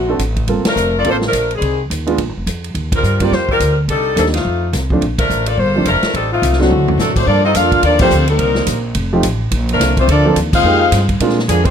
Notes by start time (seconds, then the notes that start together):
Already playing: A#1 D3 A3 C4 F#4
0.08 C4 D4 F#4 A4
0.19 A1, kick, hi-hat pedal, ride
0.36 kick, ride
0.47 G1 A#3 C4 F4 A4, kick, ride
0.65 F3 A3 D4 A#4, muted upright bass stroke, snare, ride
0.76 F1, hi-hat pedal
0.98 A#3 F4 A4 D5
1.04 A1 A#3 C4 F4 A4, kick, ride
1.10 A#3 F4 A4 C5
1.21 snare
1.28 F3 A3 D4 A#4
1.33 A#1, kick, hi-hat pedal, ride
1.51 ride
1.55 D#3 G3 C4 G#4
1.61 C2, kick, ride
1.90 D#2, kick, hi-hat pedal, ride
2.07 G#3 B3 D4 F4, ride
2.18 A#1, kick, ride
2.29 G#1
2.37 F1
2.46 F2, kick, hi-hat pedal, ride
2.64 ride
2.74 D#2, kick, ride
2.92 F4 A#4, kick, ride
2.96 G3 C4
3.03 G2, hi-hat pedal
3.20 G3 A#3 C4 D#4 F4 G4 D5, kick, ride
3.31 F2 A#3 F4 G4 C5, kick, snare
3.49 G3 C4 F4 A#4, kick
3.60 D2, kick, hi-hat pedal, ride
3.88 C2 G3 D4 D#4 A4, kick, ride
4.16 D#2 F3 G3 A#3 D4 D#4 A4, kick, hi-hat pedal, ride
4.26 snare
4.34 A3 C4 D#4 F4, snare, ride
4.45 F2, kick
4.73 C2, kick, snare, hi-hat pedal, ride
4.90 F3 A3 C4 D4, kick
5.01 A#1, kick, ride
5.19 F3 A3 D4 A#4, kick, ride
5.29 A1, hi-hat pedal
5.46 A#3 F4 A4 D5, ride
5.57 G1 A#3 F4 A4 C5, kick
5.76 F3 A3 C4 D4
5.85 F1 F3 A3 D4 A#4, kick, hi-hat pedal, ride
6.02 muted upright bass stroke, snare, ride
6.14 A1 G3 C4 D#4 A4, kick, ride
6.32 A3 C4 D#4 F4
6.42 C2, kick, hi-hat pedal, ride
6.53 snare
6.59 A2 C3 D3 F#3 A3 C4 D4 F#4, snare
6.70 D2, mid tom
6.88 floor tom
6.98 A2 C3 F#3 A3 C4 D4 A4, snare, hi-hat pedal
7.14 F#3 A3 C4 D4 F#4 C5, kick, crash
7.27 G2 F3 A#3 D4 F4 A4 D5, kick
7.44 C4 D#4 F4 A4 D#5
7.54 F2 A#3 D4 F4 A4 A#4 F5, kick, hi-hat pedal, ride
7.72 kick, ride
7.83 D#2 F3 A#3 D4 F4 A4 D5, kick, ride
7.99 D3 F3 A3 A#3 C4 D4 F4 G4 A4 C5, kick, crash
8.10 D2, hi-hat pedal
8.27 D#3 G3 A#3 C4 D#4 A#4, ride
8.38 C2, kick, ride
8.55 snare
8.67 A#1, kick, hi-hat pedal, ride
8.95 F1, kick, ride
9.13 F3 A3 C4 D#4 G4
9.23 A1, kick, hi-hat pedal, ride
9.51 A#1, kick, ride
9.69 D3 F3 A3 A#3 D4, ride
9.73 F3 A#4
9.80 C2, kick, snare, hi-hat pedal, ride
9.97 A3 C4 D4 F4 C5, kick, ride
10.08 D2 F3 A3 A#3 D4 F4 A4 D5, kick, ride
10.25 F3 A#3 C4 D4 A4
10.36 D#2, kick, hi-hat pedal, ride
10.53 G#3 C4 D#4 F4 G#4 C5 F5, kick, crash
10.64 F2 G#3 A#3 C4 D#4 G4
10.92 G2, kick, snare, hi-hat pedal, ride
11.09 kick, ride
11.20 A#2 G#3 A#3 C4 D4 F4, kick, ride
11.29 snare
11.39 snare
11.47 F2 D3 F3 G#3 A#3 D4 G#4, kick, hi-hat pedal, ride
11.64 G#3 C4 D4 F4 C5, kick, ride